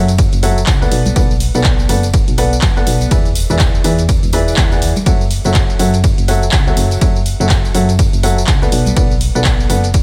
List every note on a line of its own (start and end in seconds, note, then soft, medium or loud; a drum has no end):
0.00 0.28 F#2 loud
0.08 closed hi-hat medium
0.08 tambourine soft
0.08 tambourine medium
0.18 kick loud
0.18 closed hi-hat medium
0.18 ride medium
0.18 tambourine medium
0.32 0.64 F#1 medium
0.32 closed hi-hat medium
0.32 tambourine soft
0.43 0.57 F#3 loud
0.43 0.57 A4 medium
0.43 0.57 C#5 loud
0.43 0.57 E5 loud
0.43 0.57 F#5 loud
0.43 open hi-hat loud
0.43 tambourine loud
0.58 tambourine soft
0.58 tambourine medium
0.67 0.88 C#2 medium
0.67 kick loud
0.67 clap loud
0.67 closed hi-hat medium
0.67 ride medium
0.67 tambourine medium
0.82 1.14 B3 medium
0.82 1.14 A4 medium
0.82 1.14 B4 medium
0.82 1.14 D5 medium
0.82 1.14 F#5 loud
0.82 tambourine soft
0.91 1.12 B1 loud
0.91 open hi-hat loud
0.91 tambourine medium
1.05 closed hi-hat soft
1.05 tambourine soft
1.05 tambourine medium
1.05 high conga medium
1.16 1.50 B1 loud
1.16 1.30 B3 medium
1.16 1.30 A4 medium
1.16 1.30 B4 medium
1.16 1.30 D5 medium
1.16 1.30 F#5 loud
1.16 kick loud
1.16 closed hi-hat medium
1.16 ride medium
1.16 tambourine medium
1.31 tambourine soft
1.40 open hi-hat loud
1.40 tambourine loud
1.54 1.86 B1 medium
1.54 1.87 B3 medium
1.54 1.87 A4 medium
1.54 1.87 B4 medium
1.54 1.87 D5 medium
1.54 1.87 F#5 medium
1.54 tambourine soft
1.54 tambourine medium
1.64 kick loud
1.64 clap loud
1.64 closed hi-hat medium
1.64 ride medium
1.64 tambourine medium
1.79 tambourine soft
1.89 2.23 F#1 medium
1.89 2.04 B3 medium
1.89 2.04 A4 medium
1.89 2.04 B4 medium
1.89 2.04 D5 medium
1.89 2.04 F#5 medium
1.89 open hi-hat loud
1.89 tambourine loud
2.03 closed hi-hat medium
2.03 tambourine soft
2.03 tambourine medium
2.14 kick loud
2.14 closed hi-hat medium
2.14 ride medium
2.14 tambourine medium
2.28 2.59 B1 medium
2.28 closed hi-hat medium
2.28 tambourine soft
2.38 2.52 B3 loud
2.38 2.52 A4 medium
2.38 2.52 B4 loud
2.38 2.52 D5 loud
2.38 2.52 F#5 loud
2.38 open hi-hat loud
2.38 tambourine loud
2.53 tambourine medium
2.53 tambourine soft
2.62 2.83 F#1 medium
2.62 kick loud
2.62 clap loud
2.62 closed hi-hat medium
2.62 ride medium
2.62 tambourine medium
2.76 3.09 B3 medium
2.76 3.09 A4 medium
2.76 3.09 B4 medium
2.76 3.09 D5 medium
2.76 3.09 F#5 loud
2.76 tambourine soft
2.87 3.07 B1 loud
2.87 open hi-hat loud
2.87 tambourine medium
3.01 closed hi-hat soft
3.01 tambourine soft
3.01 tambourine medium
3.11 3.45 E1 loud
3.11 3.26 E3 medium
3.11 3.26 G#4 medium
3.11 3.26 B4 medium
3.11 3.26 D5 medium
3.11 3.26 E5 medium
3.11 kick loud
3.11 closed hi-hat medium
3.11 ride medium
3.11 tambourine medium
3.25 closed hi-hat soft
3.25 tambourine soft
3.35 open hi-hat loud
3.35 tambourine loud
3.50 3.81 E1 medium
3.50 3.82 E3 medium
3.50 3.82 G#4 medium
3.50 3.82 B4 medium
3.50 3.82 D5 medium
3.50 3.82 E5 medium
3.50 tambourine soft
3.50 tambourine medium
3.59 kick loud
3.59 clap loud
3.59 closed hi-hat medium
3.59 ride medium
3.59 tambourine medium
3.75 tambourine soft
3.84 4.18 E2 loud
3.84 3.99 E3 medium
3.84 3.99 G#4 medium
3.84 3.99 B4 medium
3.84 3.99 D5 medium
3.84 3.99 E5 medium
3.84 open hi-hat loud
3.84 tambourine loud
3.98 closed hi-hat medium
3.98 tambourine soft
3.98 tambourine medium
4.09 kick loud
4.09 closed hi-hat medium
4.09 ride medium
4.09 tambourine medium
4.23 4.54 E1 medium
4.23 closed hi-hat soft
4.23 tambourine soft
4.33 4.68 E3 loud
4.33 4.68 G#4 medium
4.33 4.68 B4 medium
4.33 4.68 D5 medium
4.33 4.68 E5 loud
4.33 open hi-hat loud
4.33 tambourine medium
4.48 tambourine soft
4.48 tambourine medium
4.57 4.83 E1 loud
4.57 kick loud
4.57 clap loud
4.57 closed hi-hat medium
4.57 ride medium
4.57 tambourine medium
4.72 4.91 E3 medium
4.72 4.91 G#4 medium
4.72 4.91 B4 medium
4.72 4.91 D5 medium
4.72 4.91 F#5 medium
4.72 tambourine soft
4.82 4.93 E2 medium
4.82 open hi-hat loud
4.82 tambourine medium
4.96 closed hi-hat soft
4.96 tambourine soft
4.96 tambourine medium
4.96 high conga medium
5.06 5.40 F#1 loud
5.06 5.21 F#3 medium
5.06 5.21 A4 medium
5.06 5.21 C#5 medium
5.06 5.21 E5 medium
5.06 5.21 F#5 loud
5.06 kick loud
5.06 closed hi-hat medium
5.06 ride medium
5.06 tambourine medium
5.21 tambourine soft
5.31 open hi-hat loud
5.31 tambourine medium
5.44 5.76 F#1 medium
5.44 5.77 F#3 medium
5.44 5.77 A4 medium
5.44 5.77 C#5 medium
5.44 5.77 E5 medium
5.44 5.77 F#5 medium
5.44 tambourine soft
5.44 tambourine medium
5.54 kick loud
5.54 clap loud
5.54 closed hi-hat medium
5.54 ride medium
5.54 tambourine medium
5.70 tambourine soft
5.79 6.13 F#2 loud
5.79 5.94 F#3 medium
5.79 5.94 A4 medium
5.79 5.94 C#5 medium
5.79 5.94 E5 medium
5.79 5.94 F#5 medium
5.79 open hi-hat loud
5.79 tambourine medium
5.94 closed hi-hat medium
5.94 tambourine soft
5.94 tambourine medium
6.04 kick loud
6.04 closed hi-hat medium
6.04 ride medium
6.04 tambourine medium
6.18 6.49 F#1 medium
6.18 closed hi-hat soft
6.18 tambourine soft
6.28 6.43 F#3 loud
6.28 6.43 A4 medium
6.28 6.43 C#5 medium
6.28 6.43 E5 medium
6.28 6.43 F#5 loud
6.28 open hi-hat loud
6.28 tambourine medium
6.42 tambourine soft
6.42 tambourine medium
6.52 6.73 C#2 medium
6.52 kick loud
6.52 clap loud
6.52 closed hi-hat medium
6.52 ride medium
6.52 tambourine medium
6.67 6.99 F#3 loud
6.67 6.99 A4 medium
6.67 6.99 C#5 medium
6.67 6.99 E5 medium
6.67 6.99 F#5 loud
6.67 tambourine soft
6.77 6.97 F#1 loud
6.77 open hi-hat loud
6.77 tambourine medium
6.91 closed hi-hat soft
6.91 tambourine soft
6.91 tambourine medium
7.01 7.35 F#1 medium
7.01 7.16 F#3 medium
7.01 7.16 A4 medium
7.01 7.16 C#5 medium
7.01 7.16 E5 medium
7.01 7.16 F#5 medium
7.01 kick loud
7.01 closed hi-hat medium
7.01 ride medium
7.01 tambourine soft
7.01 tambourine medium
7.15 tambourine soft
7.26 open hi-hat loud
7.26 tambourine medium
7.40 7.71 F#1 medium
7.40 7.72 F#3 medium
7.40 7.72 A4 medium
7.40 7.72 C#5 medium
7.40 7.72 E5 medium
7.40 7.72 F#5 medium
7.40 tambourine soft
7.40 tambourine medium
7.50 kick loud
7.50 clap loud
7.50 closed hi-hat medium
7.50 ride medium
7.50 tambourine soft
7.50 tambourine medium
7.65 tambourine soft
7.75 8.09 F#2 medium
7.75 7.89 F#3 medium
7.75 7.89 A4 medium
7.75 7.89 C#5 medium
7.75 7.89 E5 medium
7.75 7.89 F#5 medium
7.75 open hi-hat loud
7.75 tambourine medium
7.89 closed hi-hat medium
7.89 tambourine medium
7.89 tambourine soft
7.99 kick loud
7.99 closed hi-hat medium
7.99 ride medium
7.99 tambourine soft
7.99 tambourine medium
8.13 8.44 F#1 medium
8.13 closed hi-hat medium
8.13 tambourine soft
8.23 8.38 F#3 loud
8.23 8.38 A4 medium
8.23 8.38 C#5 medium
8.23 8.38 E5 loud
8.23 8.38 F#5 loud
8.23 open hi-hat loud
8.23 tambourine medium
8.38 tambourine soft
8.38 tambourine medium
8.47 8.68 C#2 medium
8.47 kick loud
8.47 clap loud
8.47 closed hi-hat medium
8.47 ride medium
8.47 tambourine medium
8.62 8.94 B3 medium
8.62 8.94 A4 medium
8.62 8.94 B4 medium
8.62 8.94 D5 medium
8.62 8.94 F#5 loud
8.62 tambourine soft
8.72 8.92 B1 loud
8.72 open hi-hat loud
8.72 tambourine medium
8.86 closed hi-hat soft
8.86 tambourine soft
8.86 tambourine medium
8.86 high conga medium
8.96 9.31 B1 loud
8.96 9.11 B3 medium
8.96 9.11 A4 medium
8.96 9.11 B4 medium
8.96 9.11 D5 medium
8.96 9.11 F#5 medium
8.96 kick loud
8.96 closed hi-hat medium
8.96 ride medium
8.96 tambourine soft
8.96 tambourine medium
9.11 tambourine soft
9.21 open hi-hat loud
9.21 tambourine medium
9.35 9.66 B1 medium
9.35 9.67 B3 medium
9.35 9.67 A4 medium
9.35 9.67 B4 medium
9.35 9.67 D5 medium
9.35 9.67 F#5 medium
9.35 tambourine soft
9.35 tambourine medium
9.45 kick loud
9.45 clap loud
9.45 closed hi-hat medium
9.45 ride medium
9.45 tambourine soft
9.45 tambourine medium
9.60 tambourine soft
9.70 10.03 F#1 loud
9.70 9.84 B3 medium
9.70 9.84 A4 medium
9.70 9.84 B4 medium
9.70 9.84 D5 medium
9.70 9.84 F#5 loud
9.70 open hi-hat loud
9.70 tambourine loud
9.84 closed hi-hat medium
9.84 tambourine soft
9.84 tambourine medium
9.94 kick loud
9.94 closed hi-hat medium
9.94 ride medium
9.94 tambourine soft
9.94 tambourine medium